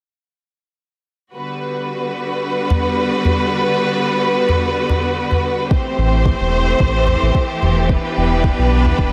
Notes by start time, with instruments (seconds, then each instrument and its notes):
1.34 string section D3 G3 B3 F#4 B4
2.70 udu
3.25 udu
4.49 udu
4.89 udu
5.31 udu
5.70 string section E3 A3 C4 G4 C5, kick
5.98 analog synth bass A1
6.25 kick
6.40 analog synth bass E1
6.80 analog synth bass A1, kick
7.07 udu
7.22 analog synth bass A1
7.35 kick
7.62 analog synth bass E1, udu
7.89 string section B3 D4 B4, kick
8.17 analog synth bass E1
8.44 kick
8.58 analog synth bass B1
8.85 udu
8.98 analog synth bass E1, kick